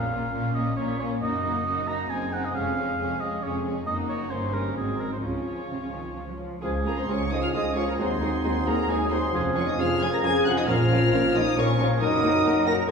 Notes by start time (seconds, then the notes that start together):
Already playing: A#1 A#2 A#3 C#4 F5
0.11 A#3 C#4 F4
0.33 A#1 A#2 A#3 C#4 F4
0.55 A#3 C#4 F4 D#5
0.76 A#1 A#2 A#3 C#4 F4 C#5
0.99 A#3 C#4 F4 C#5
1.22 F#1 F#2 A#3 D#4 F#4 D#5
1.44 A#3 D#4 F#4
1.65 F#1 F#2 A#3 D#4 F#4
1.88 A#3 D#4 F#4 A#5
2.09 F#1 F#2 C4 D#4 G#4 G#5
2.32 C4 D#4 G#4 F#5
2.45 D#5
2.53 F1 F2 G#3 C#4 G#4 F5
2.76 G#3 C#4 G#4
2.98 F1 F2 G#3 C#4 G#4
3.20 G#3 C#4 G#4 D#5
3.42 F1 F2 G#3 C#4 G#4 C#5
3.64 G#3 C#4 G#4
3.86 F#1 F#2 A#3 D#4 F#4 D#5
4.09 C#5
4.30 G1 G2 A#3 C#4 D#4 C5
4.53 G3 A#4
4.77 G#1 G#2 F#3 C4 D#4 G#4
5.00 A#4
5.13 C5
5.22 C#2 C#3 F3 C#4 F4 C#5
5.70 C3
5.82 C#3
5.93 D#3
6.15 F3
6.28 F#3
6.40 F3
6.62 C#2 F3 G#3 C#4 F4 G#4
6.85 G#3 A#3 F4 G#4 A#4 A#5
6.96 C4 C5 C6
7.07 C#2 F3 G#3 C#4 F4 G#4 C#5 C#6
7.30 G#3 D#4 F4 G#4 D#5 D#6
7.41 F4 F5 F6
7.51 C#2 G#3 D#4 F4 G#4 D#5 D#6
7.75 G#3 C#4 F4 G#4 C#5 C#6
7.87 A#3 A#4 A#5
7.98 D#2 F#3 G#3 C4 D#4 F#4 G#4 C5 C6
8.21 G#3 D#4 F#4 G#4
8.43 D#2 G#3 D#4 F#4 G#4
8.66 G#3 A#3 D#4 F#4 G#4 A#4 A#5
8.87 D#2 F#3 G#3 D#4 F#4 G#4 G#5
9.10 G#3 C4 D#4 F#4 G#4 C5 C6
9.32 F1 F2 F3 C#4 F4 G#4
9.55 F3 C#4 F4 G#4 C#5 C#6
9.66 D#4 D#5 D#6
9.78 F1 F2 F3 C#4 F4 G#4 F5 F6
10.01 F3 C#4 F4 G#4 G#5 G#6
10.12 A#4 A#5 A#6
10.23 F1 F2 F3 C#4 F4 G#4 G#5 G#6
10.45 F3 C#4 F4 F#4 G#4 F#5 F#6
10.56 D#4 D#5 D#6
10.67 A#1 A#2 F3 C#4 F4 A#4 F5 F6
10.90 F3 C#4 F4 A#4
11.12 A#1 A#2 F3 C#4 F4 A#4
11.34 F3 C#4 D#4 F4 A#4 D#5 D#6
11.57 A#1 A#2 F3 C#4 F4 A#4 C#5 C#6
11.78 F3 C#4 F4 A#4 C#5 C#6
12.00 F#1 F#2 F#3 A#3 D#4 F#4 A#4 D#5 D#6
12.23 A#3 D#4 F#4 A#4
12.45 F#1 F#2 A#3 D#4 F#4 A#4
12.66 A#3 D#4 F#4 A#4 A#5 A#6